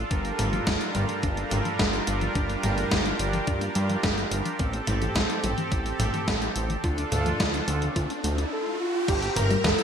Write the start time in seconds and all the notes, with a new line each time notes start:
Already playing: F3 F4 A4
0.11 G1 G3 D4 A#4, kick, closed hi-hat
0.25 A#3, closed hi-hat
0.39 G1 G3, closed hi-hat, mid tom
0.53 F3, closed hi-hat
0.67 G1 D4, kick, snare, closed hi-hat
0.81 A#3, closed hi-hat
0.95 G1 G3, closed hi-hat, mid tom
1.09 F3, closed hi-hat
1.23 G1 D4, kick, closed hi-hat
1.37 A#3, closed hi-hat
1.51 G1 G3, closed hi-hat, mid tom
1.65 F3, closed hi-hat
1.79 G1 D4, kick, snare, closed hi-hat
1.93 A#3, closed hi-hat
2.07 G1 G3, closed hi-hat
2.21 F3, closed hi-hat
2.35 G1 D4 G4, kick, closed hi-hat
2.50 A#3, closed hi-hat
2.63 G1 G3, closed hi-hat, mid tom
2.77 F3, closed hi-hat
2.91 G1 D4, kick, snare, closed hi-hat
3.05 A#3, closed hi-hat
3.19 G1 G3, closed hi-hat
3.33 F3, closed hi-hat
3.47 G2 D4, kick, closed hi-hat
3.61 A#3, closed hi-hat
3.75 G2 G3, closed hi-hat
3.89 F3, closed hi-hat
4.03 G1 D4, kick, snare, closed hi-hat
4.17 A#3, closed hi-hat
4.31 G1 G3, closed hi-hat
4.45 F3, closed hi-hat
4.59 A1 C4 G4 A4, kick, closed hi-hat, riser
4.73 A3, closed hi-hat
4.87 A1 G3, closed hi-hat, mid tom
5.02 E3, closed hi-hat
5.16 A1 C4, kick, snare, closed hi-hat
5.29 A3, closed hi-hat
5.43 A1 G3, closed hi-hat, mid tom
5.58 E3, closed hi-hat
5.72 A1 C4, kick, closed hi-hat
5.86 A3, closed hi-hat
5.99 A1 G3, closed hi-hat, mid tom
6.14 E3, closed hi-hat
6.28 A1 C4, kick, snare, closed hi-hat
6.42 A3, closed hi-hat
6.56 A1 G3, closed hi-hat
6.70 E3, closed hi-hat
6.83 D2 D4 F4 A4, kick, closed hi-hat
6.98 D4, closed hi-hat
7.12 D2 A3, closed hi-hat, mid tom
7.26 F3, closed hi-hat
7.40 D2 F4, kick, snare, closed hi-hat
7.54 D4, closed hi-hat
7.68 D2 A3, closed hi-hat
7.82 F3, closed hi-hat
7.96 D2 F4, kick, closed hi-hat
8.10 D4, closed hi-hat
8.24 D2 A3, closed hi-hat
8.38 D4, closed hi-hat
8.52 A4
8.81 F4
9.08 G1 E4 G4 C5 E5 A#5, kick, closed hi-hat, crash
9.22 C4, closed hi-hat
9.36 G1 A#3 A#4, closed hi-hat, mid tom
9.50 G3, closed hi-hat
9.64 G1 E3 A4, kick, snare, closed hi-hat
9.79 E4, closed hi-hat